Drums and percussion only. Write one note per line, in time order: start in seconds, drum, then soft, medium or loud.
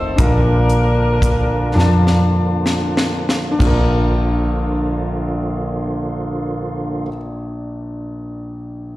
0.18 kick medium
0.18 closed hi-hat medium
0.69 closed hi-hat soft
1.22 kick medium
1.22 closed hi-hat medium
1.79 snare soft
2.07 snare soft
2.66 snare medium
2.97 snare medium
3.29 snare medium
3.60 kick medium
3.60 crash medium